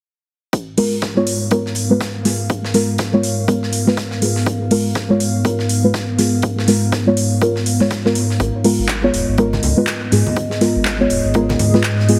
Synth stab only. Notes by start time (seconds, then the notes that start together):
0.77 G#3 B3 F4 A#4
1.16 G#3 B3 F4 C#5
1.51 G#3 B3 F4 A#4
1.90 G#3 B3 F4 B4
2.25 G#3 B3 F4 G#4
2.74 G#3 B3 F4 A#4
3.13 G#3 B3 F4 C#5
3.48 G#3 B3 F4 A#4
3.87 G#3 B3 F4 B4
4.21 G#3 B3 F4 G#4
4.71 G#3 B3 F4 A#4
5.10 G#3 B3 F4 C#5
5.45 G#3 B3 F4 A#4
5.84 G#3 B3 F4 B4
6.18 G#3 B3 F4 G#4
6.68 G#3 B3 F4 A#4
7.07 G#3 B3 F4 C#5
7.41 G#3 B3 F4 A#4
7.80 G#3 B3 F4 C#5
8.05 G#3 B3 F4 A#4
8.64 G#3 B3 F4 A#4
9.03 G#3 B3 F4 C#5
9.38 G#3 B3 F4 A#4
9.77 G#3 B3 F4 B4
10.12 G#3 B3 F4 G#4
10.61 G#3 B3 F4 A#4
11.00 G#3 B3 F4 C#5
11.35 G#3 B3 F4 A#4
11.74 G#3 B3 F4 B4
12.09 G#3 B3 F4 G#4